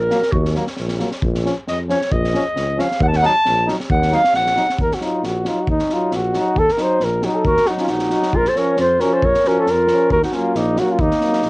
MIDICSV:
0, 0, Header, 1, 7, 480
1, 0, Start_track
1, 0, Tempo, 446097
1, 356, Time_signature, 2, 2, 24, 8
1, 7555, Tempo, 441176
1, 12424, End_track
2, 0, Start_track
2, 0, Title_t, "Flugelhorn"
2, 0, Program_c, 0, 56
2, 5182, Note_on_c, 0, 70, 82
2, 5313, Note_on_c, 0, 66, 46
2, 5330, Note_off_c, 0, 70, 0
2, 5410, Note_off_c, 0, 66, 0
2, 5419, Note_on_c, 0, 65, 57
2, 5648, Note_on_c, 0, 66, 65
2, 5664, Note_off_c, 0, 65, 0
2, 5895, Note_on_c, 0, 65, 59
2, 5911, Note_off_c, 0, 66, 0
2, 6043, Note_on_c, 0, 66, 58
2, 6059, Note_off_c, 0, 65, 0
2, 6124, Note_off_c, 0, 66, 0
2, 6130, Note_on_c, 0, 63, 75
2, 6382, Note_on_c, 0, 65, 63
2, 6398, Note_off_c, 0, 63, 0
2, 6619, Note_on_c, 0, 66, 78
2, 6635, Note_off_c, 0, 65, 0
2, 7083, Note_on_c, 0, 69, 99
2, 7099, Note_off_c, 0, 66, 0
2, 7228, Note_on_c, 0, 70, 61
2, 7244, Note_off_c, 0, 69, 0
2, 7339, Note_on_c, 0, 72, 74
2, 7356, Note_off_c, 0, 70, 0
2, 7573, Note_on_c, 0, 70, 80
2, 7590, Note_off_c, 0, 72, 0
2, 7797, Note_on_c, 0, 66, 62
2, 7813, Note_off_c, 0, 70, 0
2, 7909, Note_on_c, 0, 69, 57
2, 7926, Note_off_c, 0, 66, 0
2, 8023, Note_on_c, 0, 70, 104
2, 8039, Note_off_c, 0, 69, 0
2, 8262, Note_on_c, 0, 66, 72
2, 8278, Note_off_c, 0, 70, 0
2, 8408, Note_on_c, 0, 65, 76
2, 8425, Note_off_c, 0, 66, 0
2, 8510, Note_on_c, 0, 66, 76
2, 8526, Note_off_c, 0, 65, 0
2, 9011, Note_on_c, 0, 70, 95
2, 9027, Note_off_c, 0, 66, 0
2, 9140, Note_on_c, 0, 72, 65
2, 9156, Note_off_c, 0, 70, 0
2, 9233, Note_on_c, 0, 73, 78
2, 9249, Note_off_c, 0, 72, 0
2, 9477, Note_off_c, 0, 73, 0
2, 9493, Note_on_c, 0, 72, 89
2, 9708, Note_on_c, 0, 70, 76
2, 9724, Note_off_c, 0, 72, 0
2, 9850, Note_on_c, 0, 72, 85
2, 9866, Note_off_c, 0, 70, 0
2, 9972, Note_on_c, 0, 73, 99
2, 9988, Note_off_c, 0, 72, 0
2, 10218, Note_on_c, 0, 70, 80
2, 10234, Note_off_c, 0, 73, 0
2, 10354, Note_on_c, 0, 69, 93
2, 10370, Note_off_c, 0, 70, 0
2, 10467, Note_on_c, 0, 70, 100
2, 10484, Note_off_c, 0, 69, 0
2, 10916, Note_off_c, 0, 70, 0
2, 10922, Note_on_c, 0, 70, 104
2, 11043, Note_off_c, 0, 70, 0
2, 11050, Note_on_c, 0, 66, 58
2, 11163, Note_on_c, 0, 65, 67
2, 11179, Note_off_c, 0, 66, 0
2, 11405, Note_on_c, 0, 63, 79
2, 11421, Note_off_c, 0, 65, 0
2, 11653, Note_on_c, 0, 66, 66
2, 11669, Note_off_c, 0, 63, 0
2, 11794, Note_on_c, 0, 65, 75
2, 11811, Note_off_c, 0, 66, 0
2, 11887, Note_on_c, 0, 63, 90
2, 11903, Note_off_c, 0, 65, 0
2, 12424, Note_off_c, 0, 63, 0
2, 12424, End_track
3, 0, Start_track
3, 0, Title_t, "Clarinet"
3, 0, Program_c, 1, 71
3, 0, Note_on_c, 1, 70, 88
3, 346, Note_on_c, 1, 66, 60
3, 362, Note_off_c, 1, 70, 0
3, 593, Note_off_c, 1, 66, 0
3, 1813, Note_on_c, 1, 75, 69
3, 1919, Note_off_c, 1, 75, 0
3, 2045, Note_on_c, 1, 73, 65
3, 2276, Note_on_c, 1, 75, 74
3, 2292, Note_off_c, 1, 73, 0
3, 3014, Note_on_c, 1, 77, 68
3, 3030, Note_off_c, 1, 75, 0
3, 3247, Note_off_c, 1, 77, 0
3, 3255, Note_on_c, 1, 78, 83
3, 3314, Note_on_c, 1, 81, 60
3, 3330, Note_off_c, 1, 78, 0
3, 3404, Note_on_c, 1, 78, 110
3, 3420, Note_off_c, 1, 81, 0
3, 3496, Note_off_c, 1, 78, 0
3, 3507, Note_on_c, 1, 81, 109
3, 3941, Note_off_c, 1, 81, 0
3, 4213, Note_on_c, 1, 78, 85
3, 4458, Note_on_c, 1, 77, 108
3, 4474, Note_off_c, 1, 78, 0
3, 4683, Note_off_c, 1, 77, 0
3, 4690, Note_on_c, 1, 78, 86
3, 5130, Note_off_c, 1, 78, 0
3, 8040, Note_on_c, 1, 66, 76
3, 8290, Note_on_c, 1, 63, 71
3, 8307, Note_off_c, 1, 66, 0
3, 8403, Note_on_c, 1, 61, 49
3, 8420, Note_off_c, 1, 63, 0
3, 8510, Note_on_c, 1, 63, 77
3, 8526, Note_off_c, 1, 61, 0
3, 8986, Note_on_c, 1, 65, 79
3, 9003, Note_off_c, 1, 63, 0
3, 9144, Note_on_c, 1, 69, 78
3, 9160, Note_off_c, 1, 65, 0
3, 9252, Note_on_c, 1, 70, 72
3, 9268, Note_off_c, 1, 69, 0
3, 9481, Note_off_c, 1, 70, 0
3, 9488, Note_on_c, 1, 65, 65
3, 9719, Note_on_c, 1, 66, 64
3, 9736, Note_off_c, 1, 65, 0
3, 9855, Note_on_c, 1, 69, 71
3, 9871, Note_off_c, 1, 66, 0
3, 9977, Note_on_c, 1, 70, 73
3, 9994, Note_off_c, 1, 69, 0
3, 10220, Note_on_c, 1, 66, 75
3, 10236, Note_off_c, 1, 70, 0
3, 10360, Note_on_c, 1, 65, 63
3, 10376, Note_off_c, 1, 66, 0
3, 10443, Note_off_c, 1, 65, 0
3, 10443, Note_on_c, 1, 65, 66
3, 10915, Note_off_c, 1, 65, 0
3, 10922, Note_on_c, 1, 66, 72
3, 11029, Note_off_c, 1, 66, 0
3, 11036, Note_on_c, 1, 63, 64
3, 11161, Note_on_c, 1, 61, 59
3, 11178, Note_off_c, 1, 63, 0
3, 11404, Note_on_c, 1, 58, 65
3, 11421, Note_off_c, 1, 61, 0
3, 11646, Note_on_c, 1, 63, 50
3, 11662, Note_off_c, 1, 58, 0
3, 11764, Note_on_c, 1, 61, 48
3, 11781, Note_off_c, 1, 63, 0
3, 11877, Note_on_c, 1, 58, 59
3, 11893, Note_off_c, 1, 61, 0
3, 12424, Note_off_c, 1, 58, 0
3, 12424, End_track
4, 0, Start_track
4, 0, Title_t, "Trombone"
4, 0, Program_c, 2, 57
4, 108, Note_on_c, 2, 58, 64
4, 206, Note_off_c, 2, 58, 0
4, 599, Note_on_c, 2, 58, 65
4, 695, Note_off_c, 2, 58, 0
4, 1075, Note_on_c, 2, 58, 50
4, 1172, Note_off_c, 2, 58, 0
4, 1558, Note_on_c, 2, 61, 62
4, 1655, Note_off_c, 2, 61, 0
4, 2042, Note_on_c, 2, 61, 66
4, 2138, Note_off_c, 2, 61, 0
4, 2516, Note_on_c, 2, 61, 72
4, 2613, Note_off_c, 2, 61, 0
4, 2984, Note_on_c, 2, 61, 64
4, 3084, Note_off_c, 2, 61, 0
4, 3468, Note_on_c, 2, 63, 76
4, 3566, Note_off_c, 2, 63, 0
4, 3940, Note_on_c, 2, 63, 65
4, 4040, Note_off_c, 2, 63, 0
4, 4421, Note_on_c, 2, 63, 69
4, 4520, Note_off_c, 2, 63, 0
4, 4912, Note_on_c, 2, 63, 50
4, 5009, Note_off_c, 2, 63, 0
4, 5389, Note_on_c, 2, 63, 52
4, 5628, Note_off_c, 2, 63, 0
4, 5875, Note_on_c, 2, 63, 49
4, 6111, Note_off_c, 2, 63, 0
4, 6351, Note_on_c, 2, 63, 60
4, 6588, Note_off_c, 2, 63, 0
4, 6836, Note_on_c, 2, 63, 54
4, 7070, Note_off_c, 2, 63, 0
4, 7295, Note_on_c, 2, 63, 63
4, 7538, Note_off_c, 2, 63, 0
4, 7790, Note_on_c, 2, 63, 52
4, 8028, Note_off_c, 2, 63, 0
4, 8273, Note_on_c, 2, 63, 50
4, 8511, Note_off_c, 2, 63, 0
4, 8749, Note_on_c, 2, 63, 46
4, 8990, Note_off_c, 2, 63, 0
4, 9244, Note_on_c, 2, 61, 58
4, 9478, Note_off_c, 2, 61, 0
4, 9717, Note_on_c, 2, 61, 59
4, 9954, Note_off_c, 2, 61, 0
4, 10207, Note_on_c, 2, 61, 67
4, 10439, Note_off_c, 2, 61, 0
4, 10696, Note_on_c, 2, 61, 63
4, 10923, Note_off_c, 2, 61, 0
4, 11144, Note_on_c, 2, 58, 73
4, 11386, Note_off_c, 2, 58, 0
4, 11653, Note_on_c, 2, 58, 63
4, 11880, Note_off_c, 2, 58, 0
4, 12127, Note_on_c, 2, 58, 62
4, 12355, Note_off_c, 2, 58, 0
4, 12424, End_track
5, 0, Start_track
5, 0, Title_t, "Euphonium"
5, 0, Program_c, 3, 58
5, 122, Note_on_c, 3, 54, 56
5, 217, Note_off_c, 3, 54, 0
5, 591, Note_on_c, 3, 54, 56
5, 689, Note_off_c, 3, 54, 0
5, 1070, Note_on_c, 3, 54, 49
5, 1168, Note_off_c, 3, 54, 0
5, 1556, Note_on_c, 3, 53, 46
5, 1653, Note_off_c, 3, 53, 0
5, 2030, Note_on_c, 3, 53, 55
5, 2129, Note_off_c, 3, 53, 0
5, 2525, Note_on_c, 3, 53, 61
5, 2620, Note_off_c, 3, 53, 0
5, 2984, Note_on_c, 3, 53, 63
5, 3084, Note_off_c, 3, 53, 0
5, 3478, Note_on_c, 3, 54, 62
5, 3575, Note_off_c, 3, 54, 0
5, 3951, Note_on_c, 3, 54, 55
5, 4049, Note_off_c, 3, 54, 0
5, 4424, Note_on_c, 3, 54, 59
5, 4523, Note_off_c, 3, 54, 0
5, 4891, Note_on_c, 3, 54, 51
5, 4992, Note_off_c, 3, 54, 0
5, 5369, Note_on_c, 3, 54, 48
5, 5618, Note_off_c, 3, 54, 0
5, 5852, Note_on_c, 3, 54, 46
5, 6099, Note_off_c, 3, 54, 0
5, 6342, Note_on_c, 3, 54, 51
5, 6584, Note_off_c, 3, 54, 0
5, 6815, Note_on_c, 3, 54, 51
5, 7059, Note_off_c, 3, 54, 0
5, 7282, Note_on_c, 3, 54, 53
5, 7532, Note_off_c, 3, 54, 0
5, 7765, Note_on_c, 3, 54, 47
5, 8016, Note_off_c, 3, 54, 0
5, 8241, Note_on_c, 3, 54, 47
5, 8495, Note_off_c, 3, 54, 0
5, 8727, Note_on_c, 3, 54, 43
5, 8979, Note_off_c, 3, 54, 0
5, 9213, Note_on_c, 3, 53, 51
5, 9462, Note_off_c, 3, 53, 0
5, 9710, Note_on_c, 3, 53, 62
5, 9951, Note_off_c, 3, 53, 0
5, 10194, Note_on_c, 3, 53, 64
5, 10432, Note_off_c, 3, 53, 0
5, 10664, Note_on_c, 3, 53, 61
5, 10907, Note_off_c, 3, 53, 0
5, 11153, Note_on_c, 3, 54, 57
5, 11391, Note_off_c, 3, 54, 0
5, 11617, Note_on_c, 3, 54, 66
5, 11861, Note_off_c, 3, 54, 0
5, 12108, Note_on_c, 3, 54, 58
5, 12346, Note_off_c, 3, 54, 0
5, 12424, End_track
6, 0, Start_track
6, 0, Title_t, "Tuba"
6, 0, Program_c, 4, 58
6, 0, Note_on_c, 4, 34, 80
6, 143, Note_off_c, 4, 34, 0
6, 363, Note_on_c, 4, 39, 102
6, 626, Note_off_c, 4, 39, 0
6, 851, Note_on_c, 4, 34, 83
6, 1113, Note_off_c, 4, 34, 0
6, 1323, Note_on_c, 4, 34, 97
6, 1587, Note_off_c, 4, 34, 0
6, 1803, Note_on_c, 4, 41, 62
6, 2067, Note_off_c, 4, 41, 0
6, 2276, Note_on_c, 4, 34, 97
6, 2542, Note_off_c, 4, 34, 0
6, 2748, Note_on_c, 4, 37, 74
6, 3015, Note_off_c, 4, 37, 0
6, 3225, Note_on_c, 4, 39, 106
6, 3493, Note_off_c, 4, 39, 0
6, 3726, Note_on_c, 4, 34, 90
6, 3988, Note_off_c, 4, 34, 0
6, 4193, Note_on_c, 4, 39, 107
6, 4458, Note_off_c, 4, 39, 0
6, 4668, Note_on_c, 4, 34, 67
6, 4934, Note_off_c, 4, 34, 0
6, 5159, Note_on_c, 4, 39, 75
6, 5290, Note_off_c, 4, 39, 0
6, 5620, Note_on_c, 4, 34, 73
6, 5889, Note_off_c, 4, 34, 0
6, 6109, Note_on_c, 4, 39, 79
6, 6243, Note_off_c, 4, 39, 0
6, 6580, Note_on_c, 4, 34, 78
6, 6848, Note_off_c, 4, 34, 0
6, 7044, Note_on_c, 4, 39, 78
6, 7184, Note_off_c, 4, 39, 0
6, 7535, Note_on_c, 4, 34, 80
6, 7805, Note_off_c, 4, 34, 0
6, 8012, Note_on_c, 4, 39, 78
6, 8151, Note_off_c, 4, 39, 0
6, 8503, Note_on_c, 4, 34, 62
6, 8772, Note_off_c, 4, 34, 0
6, 8989, Note_on_c, 4, 34, 77
6, 9124, Note_off_c, 4, 34, 0
6, 9471, Note_on_c, 4, 41, 85
6, 9738, Note_off_c, 4, 41, 0
6, 9945, Note_on_c, 4, 34, 86
6, 10081, Note_off_c, 4, 34, 0
6, 10426, Note_on_c, 4, 41, 78
6, 10694, Note_off_c, 4, 41, 0
6, 10910, Note_on_c, 4, 39, 85
6, 11045, Note_off_c, 4, 39, 0
6, 11386, Note_on_c, 4, 34, 91
6, 11652, Note_off_c, 4, 34, 0
6, 11869, Note_on_c, 4, 39, 94
6, 12002, Note_off_c, 4, 39, 0
6, 12361, Note_on_c, 4, 34, 74
6, 12424, Note_off_c, 4, 34, 0
6, 12424, End_track
7, 0, Start_track
7, 0, Title_t, "Drums"
7, 112, Note_on_c, 9, 38, 31
7, 219, Note_off_c, 9, 38, 0
7, 241, Note_on_c, 9, 38, 25
7, 349, Note_off_c, 9, 38, 0
7, 349, Note_on_c, 9, 36, 77
7, 457, Note_off_c, 9, 36, 0
7, 486, Note_on_c, 9, 38, 20
7, 592, Note_off_c, 9, 38, 0
7, 592, Note_on_c, 9, 38, 19
7, 700, Note_off_c, 9, 38, 0
7, 720, Note_on_c, 9, 38, 21
7, 823, Note_off_c, 9, 38, 0
7, 823, Note_on_c, 9, 38, 23
7, 931, Note_off_c, 9, 38, 0
7, 949, Note_on_c, 9, 38, 24
7, 1056, Note_off_c, 9, 38, 0
7, 1070, Note_on_c, 9, 38, 30
7, 1178, Note_off_c, 9, 38, 0
7, 1197, Note_on_c, 9, 38, 23
7, 1305, Note_off_c, 9, 38, 0
7, 1315, Note_on_c, 9, 36, 71
7, 1422, Note_off_c, 9, 36, 0
7, 1448, Note_on_c, 9, 38, 19
7, 1556, Note_off_c, 9, 38, 0
7, 1568, Note_on_c, 9, 38, 21
7, 1675, Note_off_c, 9, 38, 0
7, 1803, Note_on_c, 9, 38, 23
7, 1911, Note_off_c, 9, 38, 0
7, 2040, Note_on_c, 9, 38, 31
7, 2147, Note_off_c, 9, 38, 0
7, 2166, Note_on_c, 9, 38, 21
7, 2274, Note_off_c, 9, 38, 0
7, 2277, Note_on_c, 9, 36, 81
7, 2384, Note_off_c, 9, 36, 0
7, 2411, Note_on_c, 9, 38, 18
7, 2519, Note_off_c, 9, 38, 0
7, 2522, Note_on_c, 9, 38, 27
7, 2630, Note_off_c, 9, 38, 0
7, 2757, Note_on_c, 9, 38, 25
7, 2865, Note_off_c, 9, 38, 0
7, 3002, Note_on_c, 9, 38, 30
7, 3110, Note_off_c, 9, 38, 0
7, 3135, Note_on_c, 9, 38, 22
7, 3232, Note_on_c, 9, 36, 73
7, 3243, Note_off_c, 9, 38, 0
7, 3340, Note_off_c, 9, 36, 0
7, 3365, Note_on_c, 9, 38, 25
7, 3473, Note_off_c, 9, 38, 0
7, 3476, Note_on_c, 9, 38, 23
7, 3584, Note_off_c, 9, 38, 0
7, 3717, Note_on_c, 9, 38, 26
7, 3824, Note_off_c, 9, 38, 0
7, 3965, Note_on_c, 9, 38, 35
7, 4073, Note_off_c, 9, 38, 0
7, 4090, Note_on_c, 9, 38, 30
7, 4195, Note_on_c, 9, 36, 88
7, 4198, Note_off_c, 9, 38, 0
7, 4303, Note_off_c, 9, 36, 0
7, 4329, Note_on_c, 9, 38, 27
7, 4434, Note_off_c, 9, 38, 0
7, 4434, Note_on_c, 9, 38, 23
7, 4542, Note_off_c, 9, 38, 0
7, 4566, Note_on_c, 9, 38, 31
7, 4672, Note_off_c, 9, 38, 0
7, 4672, Note_on_c, 9, 38, 34
7, 4780, Note_off_c, 9, 38, 0
7, 4805, Note_on_c, 9, 38, 29
7, 4912, Note_off_c, 9, 38, 0
7, 4914, Note_on_c, 9, 38, 35
7, 5022, Note_off_c, 9, 38, 0
7, 5053, Note_on_c, 9, 38, 28
7, 5150, Note_on_c, 9, 36, 65
7, 5161, Note_off_c, 9, 38, 0
7, 5258, Note_off_c, 9, 36, 0
7, 5290, Note_on_c, 9, 38, 21
7, 5394, Note_off_c, 9, 38, 0
7, 5394, Note_on_c, 9, 38, 23
7, 5502, Note_off_c, 9, 38, 0
7, 5633, Note_on_c, 9, 38, 21
7, 5741, Note_off_c, 9, 38, 0
7, 5864, Note_on_c, 9, 38, 22
7, 5971, Note_off_c, 9, 38, 0
7, 6107, Note_on_c, 9, 36, 60
7, 6214, Note_off_c, 9, 36, 0
7, 6231, Note_on_c, 9, 38, 17
7, 6339, Note_off_c, 9, 38, 0
7, 6342, Note_on_c, 9, 38, 18
7, 6450, Note_off_c, 9, 38, 0
7, 6579, Note_on_c, 9, 38, 22
7, 6686, Note_off_c, 9, 38, 0
7, 6818, Note_on_c, 9, 38, 27
7, 6926, Note_off_c, 9, 38, 0
7, 7061, Note_on_c, 9, 36, 62
7, 7169, Note_off_c, 9, 36, 0
7, 7192, Note_on_c, 9, 38, 16
7, 7289, Note_off_c, 9, 38, 0
7, 7289, Note_on_c, 9, 38, 22
7, 7397, Note_off_c, 9, 38, 0
7, 7532, Note_on_c, 9, 38, 20
7, 7641, Note_off_c, 9, 38, 0
7, 7770, Note_on_c, 9, 38, 27
7, 7879, Note_off_c, 9, 38, 0
7, 8016, Note_on_c, 9, 36, 60
7, 8125, Note_off_c, 9, 36, 0
7, 8147, Note_on_c, 9, 38, 18
7, 8244, Note_off_c, 9, 38, 0
7, 8244, Note_on_c, 9, 38, 21
7, 8353, Note_off_c, 9, 38, 0
7, 8374, Note_on_c, 9, 38, 19
7, 8479, Note_off_c, 9, 38, 0
7, 8479, Note_on_c, 9, 38, 22
7, 8588, Note_off_c, 9, 38, 0
7, 8609, Note_on_c, 9, 38, 19
7, 8717, Note_off_c, 9, 38, 0
7, 8726, Note_on_c, 9, 38, 23
7, 8835, Note_off_c, 9, 38, 0
7, 8862, Note_on_c, 9, 38, 19
7, 8971, Note_off_c, 9, 38, 0
7, 8978, Note_on_c, 9, 36, 51
7, 9087, Note_off_c, 9, 36, 0
7, 9107, Note_on_c, 9, 38, 15
7, 9216, Note_off_c, 9, 38, 0
7, 9225, Note_on_c, 9, 38, 19
7, 9334, Note_off_c, 9, 38, 0
7, 9452, Note_on_c, 9, 38, 22
7, 9561, Note_off_c, 9, 38, 0
7, 9703, Note_on_c, 9, 38, 33
7, 9812, Note_off_c, 9, 38, 0
7, 9950, Note_on_c, 9, 36, 72
7, 10059, Note_off_c, 9, 36, 0
7, 10078, Note_on_c, 9, 38, 22
7, 10187, Note_off_c, 9, 38, 0
7, 10192, Note_on_c, 9, 38, 21
7, 10301, Note_off_c, 9, 38, 0
7, 10430, Note_on_c, 9, 38, 25
7, 10539, Note_off_c, 9, 38, 0
7, 10660, Note_on_c, 9, 38, 26
7, 10768, Note_off_c, 9, 38, 0
7, 10909, Note_on_c, 9, 36, 60
7, 11018, Note_off_c, 9, 36, 0
7, 11042, Note_on_c, 9, 38, 18
7, 11146, Note_off_c, 9, 38, 0
7, 11146, Note_on_c, 9, 38, 19
7, 11255, Note_off_c, 9, 38, 0
7, 11392, Note_on_c, 9, 38, 23
7, 11500, Note_off_c, 9, 38, 0
7, 11627, Note_on_c, 9, 38, 33
7, 11736, Note_off_c, 9, 38, 0
7, 11870, Note_on_c, 9, 36, 82
7, 11979, Note_off_c, 9, 36, 0
7, 12000, Note_on_c, 9, 38, 20
7, 12109, Note_off_c, 9, 38, 0
7, 12110, Note_on_c, 9, 38, 25
7, 12219, Note_off_c, 9, 38, 0
7, 12239, Note_on_c, 9, 38, 28
7, 12341, Note_off_c, 9, 38, 0
7, 12341, Note_on_c, 9, 38, 30
7, 12424, Note_off_c, 9, 38, 0
7, 12424, End_track
0, 0, End_of_file